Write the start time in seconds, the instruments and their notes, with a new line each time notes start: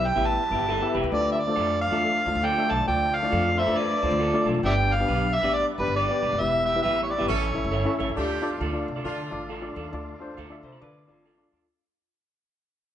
Already playing: upright bass B1, tonewheel organ G3 B3 E4, reed electric piano G4
0.07 harmonica G5
0.16 upright bass A1, reed electric piano B3 E4 G4 B4 E5, clean electric guitar G4 B4 E5
0.26 harmonica A5
0.51 upright bass G1, reed electric piano B3 E4 G4 B4 E5, clean electric guitar E4 G4
0.60 upright bass G1
0.68 clean electric guitar G4 A4 B4 E5
0.82 reed electric piano B3 E4 G4 B4 E5
0.94 upright bass E1, clean electric guitar G4 B4 E5
1.04 upright bass D#2
1.12 upright bass D2, tonewheel organ F3 A3 D4, reed electric piano A3 D4 F4 A4 D5, harmonica D5
1.32 harmonica E5
1.40 harmonica D5
1.48 reed electric piano A3 D4 F4 A4 C5
1.54 upright bass F2, clean electric guitar F4 A4 D5, reed electric piano D5
1.81 harmonica F5
1.91 upright bass E2, reed electric piano A3 D4 F4 A4 E5, clean electric guitar F4 A4 D5
2.26 upright bass D2, reed electric piano A3 D4 F4 A4 F5
2.35 upright bass D2
2.43 clean electric guitar F4 A4 D5, harmonica G5
2.58 reed electric piano A3 D4 F4 A4 E5
2.68 upright bass B1, clean electric guitar F4 A4 D5, harmonica A5
2.80 upright bass D#2
2.87 upright bass D2, reed electric piano A3 D4 F4 A4 D5, harmonica G5
3.15 harmonica F5
3.23 reed electric piano A3 D4 E4 A4 D5
3.29 upright bass F2, reed electric piano F4, clean electric guitar F4 A4 D5
3.58 clean electric guitar A4 C5, harmonica E5
3.67 upright bass E2, reed electric piano A3 D4 F4 A4 B4, clean electric guitar F4 A4 D5
3.76 clean electric guitar B4 D5, harmonica D5
4.03 upright bass D2, reed electric piano A3 D4 F4 A4 C5, clean electric guitar F4 A4
4.11 upright bass D2
4.19 clean electric guitar F4 A4 D5
4.34 reed electric piano A3 D4 F4 A4 D5
4.46 upright bass B1, clean electric guitar F4 A4 D5
4.54 upright bass G#1
4.63 upright bass G1, tonewheel organ G3 B3, reed electric piano B3 D4 G4 B4 D5, harmonica D5 E5 G5
4.93 harmonica F5
5.00 reed electric piano B3 D4 G4 B4 F5
5.08 upright bass B1, clean electric guitar G4 B4 D5
5.35 harmonica E5
5.43 upright bass A1, reed electric piano B3 D4 G4 B4 D5, clean electric guitar G4 B4 D5
5.54 harmonica D5
5.78 upright bass G1, reed electric piano B3 D4 G4 B4 D5, harmonica B4
5.87 upright bass G1
5.96 clean electric guitar G4 B4 D5, harmonica D5
6.10 reed electric piano B3 D4 G4 B4 D5
6.22 upright bass E1, clean electric guitar G4 B4 D5
6.32 upright bass F1
6.40 upright bass E1, reed electric piano B3 E4 G4 B4 E5, tonewheel organ E4, harmonica E5
6.66 horn section B3 E4 G4, harmonica E5
6.75 reed electric piano B3 E4 G4 B4 E5
6.83 upright bass A1, clean electric guitar G4 B4 E5, harmonica E5
7.03 harmonica C#5
7.11 harmonica D5
7.18 upright bass G1, reed electric piano B3 E4 G4 B4 D5, clean electric guitar G4 B4 E5
7.28 upright bass A1, tonewheel organ A3 C#4 E4, horn section C#4 E4 A4, harmonica C#5
7.54 upright bass A1, reed electric piano C#4 E4 A4 C#5 E5
7.64 upright bass G1
7.71 clean electric guitar A4 C#5 E5
7.85 reed electric piano C#4 E4 A4 C#5 E5
7.99 upright bass A1, clean electric guitar A4 C#5 E5
8.09 upright bass D#2
8.16 upright bass D2, horn section A3 D4 G4, tonewheel organ A3 D4 F4, reed electric piano D4 F4 A4 D5
8.42 upright bass E2, reed electric piano D4 F4 A4 D5
8.51 horn section A3 D4 F4
8.61 upright bass D2, clean electric guitar F4 A4 D5
8.73 reed electric piano D4 F4 A4 D5
8.88 upright bass C3
8.96 clean electric guitar F4 A4 D5
9.04 upright bass D3, horn section A3 D4 F4, reed electric piano D4 F4 A4 D5
9.31 upright bass A1, reed electric piano D4 F4 A4 D5
9.49 clean electric guitar F4 A4 D5
9.62 reed electric piano D4 F4 A4 D5
9.76 upright bass D#2, clean electric guitar F4 A4 D5
9.93 upright bass D2, reed electric piano D4 F4 A4 D5
10.18 upright bass E2, reed electric piano D4 F4 A4 C5
10.37 upright bass D2, clean electric guitar F4 A4 D5
10.50 reed electric piano D4 F4 A4 E5
10.63 upright bass C3, clean electric guitar A4 C5
10.72 clean electric guitar F4 A4 D5
10.81 upright bass D3, reed electric piano D4 F4 A4 B4, clean electric guitar B4 D5
11.08 upright bass A1, reed electric piano D4 F4 A4 D5, clean electric guitar F4 A4
11.25 clean electric guitar F4 A4 D5
11.38 reed electric piano D4 F4 A4 D5
11.51 upright bass D#2, clean electric guitar F4 A4 D5